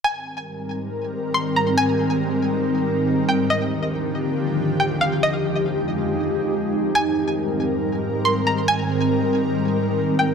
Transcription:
0.04 G#2 D#3 G3 C4 A#4 G#5
1.34 C6
1.56 A#5
1.78 G#5
3.29 G5
3.50 D#2 D3 F3 G4 D#5
4.80 G5
5.01 F5
5.23 F2 G#3 D#4 D#5
6.95 G#2 D#3 G3 C4 A#4 G#5
8.25 C6
8.47 A#5
8.68 G#5
10.19 G5

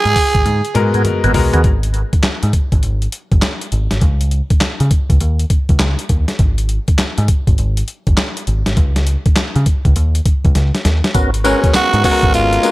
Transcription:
Already playing: G#4
0.05 G#2, closed hi-hat
0.16 kick, open hi-hat, tambourine
0.35 G#1, kick, closed hi-hat
0.46 G#2, closed hi-hat, high tom
0.65 closed hi-hat
0.75 G#2 G#3 B3 F#4 A#4, closed hi-hat, mid tom
0.94 G#2 B3 F#4 G#4 A#4, closed hi-hat
1.05 closed hi-hat, mid tom
1.24 G#1 B3 F#4 G#4 A#4, closed hi-hat, mid tom
1.34 B1 G#3 B3 F#4 A#4, floor tom, open hi-hat
1.53 D#2 B3 F#4 G#4 A#4, closed hi-hat, floor tom
1.64 G#1, kick, closed hi-hat
1.83 closed hi-hat
1.94 closed hi-hat
2.13 kick, closed hi-hat
2.23 muted picked electric bass stroke, snare, clap, closed hi-hat
2.43 G#2, closed hi-hat
2.53 kick, closed hi-hat
2.72 G#1, kick, closed hi-hat
2.83 G#1, closed hi-hat
3.02 closed hi-hat
3.12 closed hi-hat
3.32 F#1, kick, closed hi-hat
3.42 snare, clap, closed hi-hat
3.61 closed hi-hat
3.72 G#1, closed hi-hat
3.91 G#1, snare, closed hi-hat
4.01 C#2, kick, closed hi-hat
4.21 closed hi-hat
4.31 closed hi-hat
4.50 kick, closed hi-hat
4.61 muted picked electric bass stroke, snare, clap, closed hi-hat
4.80 C#3, closed hi-hat
4.91 kick, closed hi-hat
5.10 C#2, kick, closed hi-hat
5.21 D#2, closed hi-hat
5.39 closed hi-hat
5.50 kick, closed hi-hat
5.69 C#2, kick, closed hi-hat
5.79 C#2, snare, clap, closed hi-hat
5.99 closed hi-hat
6.09 D#2, kick, closed hi-hat
6.28 snare, closed hi-hat
6.39 G#1, kick, closed hi-hat
6.58 closed hi-hat
6.69 closed hi-hat
6.88 kick, closed hi-hat
6.99 muted picked electric bass stroke, snare, clap, closed hi-hat
7.18 G#2, closed hi-hat
7.28 kick, closed hi-hat
7.47 G#1, kick, closed hi-hat
7.58 G#1, closed hi-hat
7.77 closed hi-hat
7.88 closed hi-hat
8.07 F#1, kick, closed hi-hat
8.17 snare, clap, closed hi-hat
8.37 closed hi-hat
8.47 G#1, closed hi-hat
8.66 G#1, snare, closed hi-hat
8.77 C#2, kick, closed hi-hat
8.96 snare, closed hi-hat
9.07 closed hi-hat
9.26 kick, closed hi-hat
9.36 muted picked electric bass stroke, snare, clap, closed hi-hat
9.56 C#3, closed hi-hat
9.66 kick, closed hi-hat
9.85 C#2, kick, closed hi-hat
9.96 D#2, closed hi-hat
10.15 closed hi-hat
10.26 kick, closed hi-hat
10.45 C#2, kick, closed hi-hat
10.55 C#2, snare, closed hi-hat
10.75 snare, closed hi-hat
10.85 D#2, snare, closed hi-hat
11.04 snare, closed hi-hat
11.14 G#1 B3 C#4 F#4 A#4, kick, closed hi-hat, tambourine
11.34 closed hi-hat
11.44 G#3 B3 C#4 F#4 A#4, closed hi-hat, tambourine
11.64 kick, closed hi-hat
11.74 F#4, muted picked electric bass stroke, snare, clap, closed hi-hat, tambourine
11.93 G#2, closed hi-hat
12.04 G#3 B3 C#4 F#4 A4, kick, open hi-hat, tambourine
12.11 A#4
12.23 G#1, kick, closed hi-hat
12.34 G#1 F4, closed hi-hat, tambourine
12.53 closed hi-hat
12.63 G#3 B3 C#4 F#4 A#4, closed hi-hat, tambourine

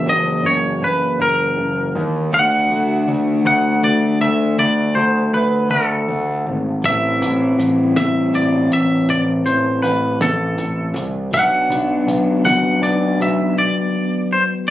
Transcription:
Already playing: E3 A#3 C#4 F#4
0.06 F#1 D#5
0.43 F#1 C#5
0.82 F#1 B4
1.19 F#1 A#4
1.57 F#1
1.95 D#2
2.31 D2 A3 D4 F#4 F#5
2.71 D2
3.08 D2
3.45 D2 F#5
3.83 D2 D5
4.21 D2 E5
4.58 D2 D5
4.95 D2 C5
5.33 D2 B4
5.70 D2 A4
6.08 D2
6.46 G#1
6.82 A1 E3 C4 E4 E5, kick, closed hi-hat
7.21 A1, closed hi-hat
7.59 A1, closed hi-hat
7.96 A1 E5, snare, closed hi-hat
8.33 A1 D5, closed hi-hat
8.71 A1 E5, closed hi-hat
9.09 A1 D5, kick, closed hi-hat
9.45 A1 C5, closed hi-hat
9.82 A1 B4, closed hi-hat
10.20 A1 A4, snare, closed hi-hat
10.58 A1, closed hi-hat
10.95 C2, closed hi-hat
11.31 B1 F#3 B3 D4 F#5, kick, closed hi-hat
11.70 B1, closed hi-hat
12.07 B1, closed hi-hat
12.45 B1 F#5, snare, closed hi-hat
12.82 B1 D5, closed hi-hat
13.20 B1 E5, closed hi-hat
13.58 D5
14.33 C5

